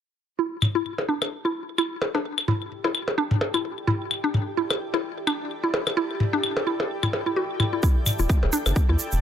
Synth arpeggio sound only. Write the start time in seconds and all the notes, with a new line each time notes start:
0.39 E4
0.75 E4
1.09 D4
1.45 E4
1.78 E4
2.15 D4
2.48 E4
2.84 E4
3.18 D4
3.54 E4
3.87 E4
4.24 D4
4.57 E4
4.94 E4
5.27 D4
5.64 E4
5.97 E4
6.33 D4
6.67 E4
7.03 E4
7.26 E4
7.36 F#4
7.60 E4
7.73 E4
7.83 E4
8.19 E4
8.53 D4
8.89 E4